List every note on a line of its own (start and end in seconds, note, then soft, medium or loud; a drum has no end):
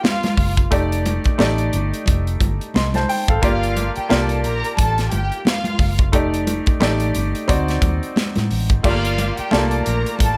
0.00 0.74 A#3 medium
0.00 0.74 F4 medium
0.00 0.54 F4 medium
0.00 0.72 G4 medium
0.00 0.73 D5 medium
0.00 0.54 F5 medium
0.00 high conga medium
0.05 snare loud
0.23 snare soft
0.23 closed hi-hat soft
0.23 high conga medium
0.37 0.67 F#1 medium
0.37 kick medium
0.37 open hi-hat medium
0.57 kick medium
0.57 closed hi-hat soft
0.71 1.18 F1 loud
0.71 1.25 A3 medium
0.71 1.26 D#4 medium
0.71 1.26 G4 medium
0.71 1.26 D5 medium
0.71 kick medium
0.71 closed hi-hat medium
0.92 closed hi-hat medium
1.06 closed hi-hat medium
1.06 muted conga medium
1.24 muted fingered electric bass stroke soft
1.24 kick medium
1.24 closed hi-hat soft
1.38 1.69 A1 medium
1.38 2.41 A3 medium
1.38 2.42 D#4 medium
1.38 2.42 G4 medium
1.38 2.43 D5 medium
1.38 snare loud
1.38 high conga medium
1.58 closed hi-hat soft
1.73 1.91 G1 medium
1.73 closed hi-hat medium
1.73 low conga soft
1.94 closed hi-hat soft
2.06 2.37 F1 medium
2.06 kick medium
2.06 closed hi-hat medium
2.06 muted conga soft
2.27 closed hi-hat soft
2.40 2.58 G1 medium
2.40 kick medium
2.40 closed hi-hat medium
2.40 muted conga soft
2.61 closed hi-hat soft
2.74 3.04 C2 medium
2.74 2.94 D#5 soft
2.74 2.94 C6 medium
2.74 snare loud
2.74 high conga medium
2.94 3.09 C5 medium
2.94 3.08 A5 medium
2.94 snare soft
2.94 closed hi-hat soft
2.94 high conga medium
3.09 3.28 G5 medium
3.09 open hi-hat medium
3.28 3.41 G#1 medium
3.28 3.61 A4 medium
3.28 3.61 F5 medium
3.28 kick medium
3.42 3.89 G1 medium
3.42 3.96 A#3 medium
3.42 3.93 F4 medium
3.42 3.97 F4 medium
3.42 3.97 G4 medium
3.42 3.97 D5 medium
3.42 3.93 F5 loud
3.42 kick medium
3.42 closed hi-hat medium
3.42 muted conga soft
3.63 closed hi-hat medium
3.77 closed hi-hat medium
3.77 muted conga soft
3.96 4.08 G4 medium
3.96 4.07 G5 medium
3.96 muted fingered electric bass stroke soft
3.96 closed hi-hat soft
4.09 4.45 C2 medium
4.09 5.12 A#3 medium
4.09 5.13 F4 medium
4.09 5.13 G4 medium
4.09 4.38 A4 medium
4.09 5.14 D5 medium
4.09 4.37 A5 medium
4.09 snare loud
4.09 high conga medium
4.29 closed hi-hat soft
4.44 4.61 A#1 medium
4.44 4.71 A#4 medium
4.44 4.71 A#5 medium
4.44 closed hi-hat medium
4.64 closed hi-hat soft
4.77 5.07 A1 medium
4.77 5.05 A4 medium
4.77 5.05 A5 loud
4.77 kick medium
4.77 closed hi-hat medium
4.77 muted conga soft
4.98 snare soft
4.98 closed hi-hat soft
5.11 5.29 G1 medium
5.11 5.39 G4 medium
5.11 5.39 G5 medium
5.11 closed hi-hat medium
5.11 muted conga soft
5.32 closed hi-hat soft
5.45 5.96 F4 medium
5.45 5.96 F5 loud
5.45 snare loud
5.45 high conga medium
5.64 closed hi-hat soft
5.64 high conga medium
5.79 6.13 F#1 medium
5.79 kick medium
5.79 open hi-hat medium
5.98 kick medium
5.98 closed hi-hat soft
6.12 6.59 F1 medium
6.12 6.67 A3 medium
6.12 6.67 D#4 medium
6.12 6.67 G4 medium
6.12 6.68 D5 medium
6.12 kick medium
6.12 closed hi-hat medium
6.34 closed hi-hat medium
6.47 closed hi-hat medium
6.47 muted conga medium
6.66 muted fingered electric bass stroke soft
6.66 kick medium
6.66 closed hi-hat soft
6.80 7.10 A1 medium
6.80 7.48 A3 medium
6.80 7.47 D#4 medium
6.80 7.49 G4 medium
6.80 7.48 D5 medium
6.80 snare loud
6.80 high conga medium
7.00 closed hi-hat soft
7.15 7.32 G1 medium
7.15 closed hi-hat medium
7.15 low conga medium
7.35 closed hi-hat soft
7.48 7.78 D2 medium
7.48 8.58 C4 medium
7.48 8.58 D#4 medium
7.48 8.58 F#4 medium
7.48 8.59 D5 medium
7.48 kick medium
7.48 closed hi-hat loud
7.48 muted conga soft
7.68 snare soft
7.68 closed hi-hat soft
7.82 7.99 D#2 medium
7.82 kick medium
7.82 closed hi-hat medium
7.82 muted conga soft
8.03 closed hi-hat soft
8.16 snare loud
8.16 high conga medium
8.35 8.49 A2 medium
8.35 snare soft
8.35 closed hi-hat soft
8.35 high conga medium
8.51 8.68 A1 medium
8.51 open hi-hat medium
8.69 8.82 G#1 medium
8.69 kick medium
8.69 closed hi-hat soft
8.83 9.30 G1 medium
8.83 8.91 A3 medium
8.83 9.38 F4 medium
8.83 9.35 F4 loud
8.83 9.38 G4 medium
8.83 9.39 D5 medium
8.83 9.35 F5 loud
8.83 kick medium
8.83 crash medium
8.83 muted conga soft
8.90 9.41 A#3 medium
9.05 closed hi-hat medium
9.18 closed hi-hat medium
9.18 muted conga medium
9.37 9.49 G4 medium
9.37 9.49 G5 medium
9.37 muted fingered electric bass stroke soft
9.37 closed hi-hat soft
9.51 9.81 C2 medium
9.51 9.59 A3 medium
9.51 10.37 F4 medium
9.51 10.37 G4 medium
9.51 9.79 A4 medium
9.51 10.37 D5 medium
9.51 9.79 A5 medium
9.51 snare loud
9.51 high conga medium
9.57 10.37 A#3 medium
9.71 closed hi-hat soft
9.85 10.03 A#1 medium
9.85 10.12 A#4 medium
9.85 10.12 A#5 medium
9.85 closed hi-hat medium
10.06 closed hi-hat soft
10.19 10.37 A1 medium
10.19 10.37 A4 medium
10.19 10.37 A5 loud
10.19 kick medium
10.19 closed hi-hat loud
10.19 muted conga soft